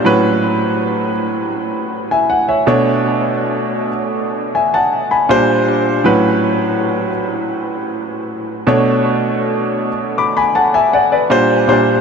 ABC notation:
X:1
M:4/4
L:1/16
Q:1/4=80
K:A
V:1 name="Grand piano"
z8 z3 [eg] f [ce]2 z | z8 [eg] [fa]2 [gb]2 z3 | z16 | z6 [bd'] [gb] [fa] [eg] [df] [Bd]2 z3 |]
V:2 name="Grand piano"
[A,,F,CB]6 z8 [B,,A,Dc]2- | [B,,A,Dc]4 z8 [^A,,=G,D^B]4 | [A,,F,CB]6 z8 [B,,A,Dc]2- | [B,,A,Dc]4 z8 [^A,,=G,D^B]2 [A,,G,DB]2 |]